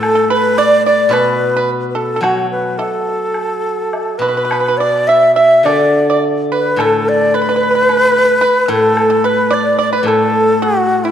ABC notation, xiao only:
X:1
M:4/4
L:1/16
Q:1/4=108
K:none
V:1 name="Xiao"
A2 B2 d2 d2 B4 z3/2 B/2 A2 | ^F2 B2 A8- A2 B2- | B2 d2 e2 e2 d4 z2 B2 | A2 d2 B8- B2 A2- |
A2 B2 d2 d B A4 ^F3 E |]